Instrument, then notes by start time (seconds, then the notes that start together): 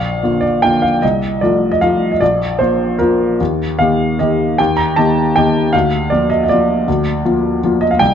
upright piano
Already playing: A#1 F5
0.23 D3 A#3 F4
0.41 D5
0.62 D3 A#3 F4 G5
0.82 F5
1.02 C2 D#5
1.41 F3 A3 F4 D5
1.72 D#5
1.81 F3 A3 F4 F5
2.12 D#5
2.20 A#1 D5
2.59 F3 A#3 F4 C5
2.98 F3 A#3 F4 A#4
3.40 D#2
3.79 D#3 A#3 G4 F5
4.19 D#3 A#3 G4 D#5
4.58 D#2 G5
4.77 A#5
4.96 D#3 A#3 G4 A5
5.36 D#3 A#3 G4 G5
5.73 D2 F5
6.10 F3 A#3 F4 D5
6.30 D#5
6.44 D#5
6.49 F3 A#3 F4 D5
6.88 D2
7.25 F3 A#3 F4
7.64 F3 A#3 F4
7.81 D#5
7.91 F5
7.99 C2 G5